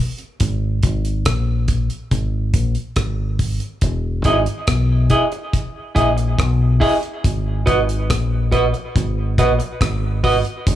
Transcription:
0.18 closed hi-hat
0.40 fingered electric bass G#1, kick, closed hi-hat
0.83 fingered electric bass G#1, kick, closed hi-hat
1.05 closed hi-hat
1.25 fingered electric bass A#1, kick, cross-stick, closed hi-hat
1.68 kick, closed hi-hat
1.90 closed hi-hat
2.11 fingered electric bass G#1, kick, closed hi-hat
2.54 fingered electric bass A#1, kick, closed hi-hat
2.75 closed hi-hat
2.96 fingered electric bass G#1, kick, cross-stick, closed hi-hat
3.39 kick, open hi-hat
3.60 closed hi-hat
3.81 fingered electric bass E1, kick, closed hi-hat
4.24 fingered electric bass G#1, clean electric guitar E4 G#4 D#5, kick, closed hi-hat
4.46 closed hi-hat
4.67 fingered electric bass B1, kick, cross-stick, closed hi-hat
5.10 clean electric guitar E4 G#4 D#5, kick, closed hi-hat
5.32 muted clean electric guitar stroke, closed hi-hat
5.53 kick, closed hi-hat
5.95 fingered electric bass A#1, clean electric guitar E4 G#4 D#5, kick, closed hi-hat
6.17 muted clean electric guitar stroke, closed hi-hat
6.39 fingered electric bass B1, kick, cross-stick, closed hi-hat
6.80 clean electric guitar E4 G#4 D#5, kick, open hi-hat
7.03 closed hi-hat
7.24 fingered electric bass G#1, kick, closed hi-hat
7.66 fingered electric bass G#1, clean electric guitar F#4 B4 D#5, kick, closed hi-hat
7.89 closed hi-hat
8.10 fingered electric bass A#1, kick, cross-stick, closed hi-hat
8.52 clean electric guitar F#4 B4 D#5, kick, closed hi-hat
8.74 muted clean electric guitar stroke, closed hi-hat
8.96 fingered electric bass G#1, kick, closed hi-hat
9.38 fingered electric bass A#1, clean electric guitar F#4 B4 D#5, kick, closed hi-hat
9.59 muted clean electric guitar stroke, closed hi-hat
9.81 fingered electric bass G#1, kick, cross-stick, closed hi-hat
10.24 clean electric guitar F#4 B4 D#5, kick, open hi-hat
10.45 closed hi-hat
10.67 fingered electric bass E1, kick, closed hi-hat

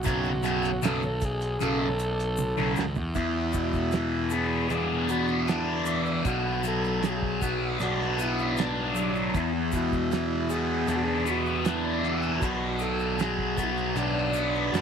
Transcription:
0.03 picked electric bass B1, distorted electric guitar F#2 C#3 F#3, transistor combo organ F#4, kick, closed hi-hat, shaker
0.24 shaker
0.43 distorted electric guitar F#2 C#3 F#3, closed hi-hat, shaker
0.62 closed hi-hat, shaker
0.82 picked electric bass B1, distorted electric guitar F#2 C#3 F#3, transistor combo organ A4, snare, closed hi-hat, shaker
1.02 muted distorted electric guitar stroke, shaker
1.21 transistor combo organ G#4, kick, closed hi-hat, shaker
1.41 closed hi-hat, shaker
1.60 picked electric bass B1, distorted electric guitar F#2 C#3 F#3, transistor combo organ A4, closed hi-hat, shaker
1.99 closed hi-hat, shaker
2.19 closed hi-hat, shaker
2.37 high tom, shaker
2.57 picked electric bass B1, distorted electric guitar F#2 C#3 F#3, shaker
2.76 picked electric bass C#2, snare, shaker
2.95 picked electric bass E2, floor tom, shaker
3.14 distorted electric guitar E2, picked electric bass E2, transistor combo organ E4, kick, closed hi-hat, shaker
3.53 distorted electric guitar B2, transistor combo organ E4, kick, closed hi-hat, shaker
3.73 kick, shaker
3.92 distorted electric guitar E3, snare, closed hi-hat, shaker
4.30 distorted electric guitar B3, transistor combo organ G#4, closed hi-hat, shaker
4.70 picked electric bass E2, distorted electric guitar D4, transistor combo organ G#4, closed hi-hat, shaker
5.09 distorted electric guitar B3, transistor combo organ F#4, closed hi-hat, shaker
5.27 shaker
5.48 distorted electric guitar D4, transistor combo organ E4, snare, closed hi-hat, shaker
5.85 distorted electric guitar E3, closed hi-hat, shaker
6.06 shaker
6.24 picked electric bass B1, distorted electric guitar B2, transistor combo organ F#4, kick, closed hi-hat, shaker
6.63 distorted electric guitar F#3, closed hi-hat, shaker
6.68 transistor combo organ A4
6.85 shaker
7.02 distorted electric guitar F#3, transistor combo organ G#4, snare, closed hi-hat, shaker
7.10 transistor combo organ F#4
7.17 transistor combo organ G#4
7.23 kick
7.41 distorted electric guitar B3, transistor combo organ F#4, kick, closed hi-hat, shaker
7.80 picked electric bass B1, distorted electric guitar D4, transistor combo organ F#4, closed hi-hat, shaker
8.02 snare
8.18 distorted electric guitar B3, transistor combo organ E4, closed hi-hat, shaker
8.39 shaker
8.57 distorted electric guitar D4, transistor combo organ D4, snare, closed hi-hat, shaker
8.95 distorted electric guitar F#3, closed hi-hat, shaker
9.15 shaker
9.34 picked electric bass E2, distorted electric guitar E2, transistor combo organ E4, kick, closed hi-hat, shaker
9.72 distorted electric guitar B2, transistor combo organ E4, kick, closed hi-hat, shaker
9.92 kick, shaker
10.12 distorted electric guitar E3, snare, closed hi-hat, shaker
10.50 distorted electric guitar B3, transistor combo organ G#4, closed hi-hat, shaker
10.87 picked electric bass E2, distorted electric guitar D4, transistor combo organ G#4, closed hi-hat, shaker
10.96 transistor combo organ F#4
11.04 transistor combo organ G#4
11.25 distorted electric guitar B3, closed hi-hat, shaker
11.30 transistor combo organ F#4
11.46 shaker
11.64 distorted electric guitar D4, transistor combo organ E4, snare, closed hi-hat, shaker
12.02 distorted electric guitar E3, closed hi-hat
12.22 shaker
12.39 picked electric bass B1, distorted electric guitar B2, kick, closed hi-hat, shaker
12.44 transistor combo organ F#4
12.79 distorted electric guitar F#3, transistor combo organ A4, closed hi-hat, shaker
12.99 shaker
13.18 distorted electric guitar F#3, transistor combo organ G#4, snare, closed hi-hat, shaker
13.39 kick
13.57 distorted electric guitar B3, transistor combo organ F#4, kick, closed hi-hat, shaker
13.63 transistor combo organ E4
13.71 transistor combo organ F#4
13.77 shaker
13.94 picked electric bass B1, distorted electric guitar D4, transistor combo organ D4, closed hi-hat, shaker
14.18 snare
14.33 distorted electric guitar B3, closed hi-hat, shaker
14.55 shaker
14.72 picked electric bass F#2, distorted electric guitar D4, transistor combo organ F#4, snare, closed hi-hat, shaker

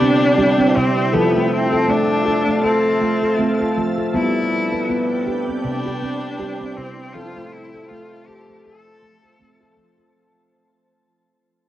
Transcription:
Already playing: handpan C3, cello D4, ambient pad E4 E5 G5
0.01 handpan C4
0.38 handpan G3 G4
0.58 handpan C4
0.76 handpan C3, cello C4
1.13 handpan F3 A4, cello B3, ambient pad F4 A5
1.35 handpan A3
1.53 cello C4
1.72 handpan A4
1.88 handpan A3, cello D4
2.26 handpan A4
2.47 handpan A3
2.63 cello C4, handpan A4
3.02 handpan A3
3.22 handpan A4
3.39 handpan A3 C4
3.61 handpan A4
3.77 handpan F3 A3
3.98 handpan A4
4.14 handpan G3 B3, ambient pad D4 B4 G5, cello E4
4.72 handpan B4
4.89 handpan B3
5.26 handpan G4
5.48 handpan C4
5.64 handpan C3, cello D4, ambient pad E4 C5
5.86 handpan G4
6.02 handpan C4
6.39 handpan G3 G4
6.61 handpan C4
6.77 handpan C3, cello C4
7.13 ambient pad F3 A5, handpan F3 A4, cello F4
7.36 handpan A3
7.52 cello E4
7.74 handpan A4
7.88 handpan A3, cello F4
8.27 cello G4, handpan A4
8.49 handpan A3
8.64 cello A4, handpan A4
9.03 handpan A3
9.24 handpan A4
9.39 handpan A3 C4
9.61 handpan A4
9.77 handpan F3 A3
9.98 handpan A4

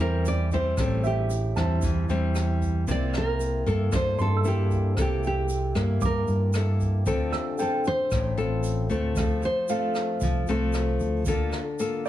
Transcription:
Already playing: fingered electric bass E2, nylon-string guitar E3
0.00 nylon-string guitar G3 C4 E4 A#4
0.25 nylon-string guitar D5, closed hi-hat, shaker
0.51 nylon-string guitar G3 C4 E4 C5, kick, closed hi-hat, shaker
0.77 fingered electric bass A1, nylon-string guitar A2 G3 C4 E4 A4, kick, cross-stick, closed hi-hat, shaker
1.04 nylon-string guitar G4, grand piano E5, closed hi-hat, shaker
1.30 closed hi-hat, shaker
1.56 fingered electric bass E2, nylon-string guitar G3 C4 E4, grand piano A5, kick, cross-stick, closed hi-hat, shaker
1.82 fingered electric bass E2, nylon-string guitar E3, kick, closed hi-hat, shaker
2.08 fingered electric bass E2, nylon-string guitar G3 C4 E4, closed hi-hat, shaker
2.35 cross-stick, closed hi-hat, shaker
2.61 kick, closed hi-hat, shaker
2.87 fingered electric bass C2, nylon-string guitar C3 A#3 E4 D5, kick, closed hi-hat, shaker
3.13 cross-stick, closed hi-hat, shaker
3.18 nylon-string guitar A#4
3.40 closed hi-hat, shaker
3.66 fingered electric bass G2, nylon-string guitar A#3 E4 A4, kick, closed hi-hat, shaker
3.72 nylon-string guitar A4
3.92 nylon-string guitar G2 C5, fingered electric bass G2, kick, cross-stick, closed hi-hat, shaker
4.18 fingered electric bass G2, nylon-string guitar A4, grand piano C6, closed hi-hat, shaker
4.37 grand piano E6
4.44 nylon-string guitar A#3 E4 G4 A4, closed hi-hat, shaker
4.71 kick, closed hi-hat, shaker
4.97 fingered electric bass C2, nylon-string guitar C3 A#3 E4 A4, kick, cross-stick, closed hi-hat, shaker
5.01 nylon-string guitar G4
5.23 nylon-string guitar G4, closed hi-hat, shaker
5.49 closed hi-hat, shaker
5.75 fingered electric bass G2, nylon-string guitar A#3 E4, kick, cross-stick, closed hi-hat, shaker
6.01 nylon-string guitar G2, fingered electric bass G2, grand piano D6, kick, closed hi-hat, shaker
6.05 nylon-string guitar A#4
6.27 fingered electric bass G2, closed hi-hat, shaker
6.53 nylon-string guitar A#3 E4 A4, cross-stick, closed hi-hat, shaker
6.80 kick, closed hi-hat, shaker
7.06 fingered electric bass D2, nylon-string guitar D3 C4 F4 A4, kick, closed hi-hat, shaker
7.32 grand piano E6, cross-stick, closed hi-hat, shaker
7.58 nylon-string guitar C4 F4 A4, grand piano G5, closed hi-hat, shaker
7.85 nylon-string guitar C5, closed hi-hat, shaker
8.11 fingered electric bass A1, nylon-string guitar A2, kick, cross-stick, closed hi-hat, shaker
8.37 fingered electric bass A1, nylon-string guitar C4 F4 A4, closed hi-hat, shaker
8.64 closed hi-hat, shaker
8.90 fingered electric bass D2, nylon-string guitar A3 C4 F4 A4, closed hi-hat, shaker
9.16 fingered electric bass D2, nylon-string guitar F3 A4, kick, cross-stick, closed hi-hat, shaker
9.42 nylon-string guitar C5, closed hi-hat, shaker
9.69 nylon-string guitar A3 C4 F4 A4, grand piano F5, closed hi-hat, shaker
9.95 cross-stick, closed hi-hat, shaker
10.21 fingered electric bass C2, nylon-string guitar F3, kick, closed hi-hat, shaker
10.47 fingered electric bass C2, nylon-string guitar A3 C4 F4 A4, closed hi-hat, shaker
10.73 cross-stick, closed hi-hat, shaker
11.00 fingered electric bass D2, closed hi-hat, shaker
11.26 fingered electric bass D2, nylon-string guitar D3 A#3 F4 A4, kick, closed hi-hat, shaker
11.52 cross-stick, closed hi-hat, shaker
11.79 nylon-string guitar A#3 F4 A4, closed hi-hat, shaker
12.05 grand piano D5, closed hi-hat, shaker

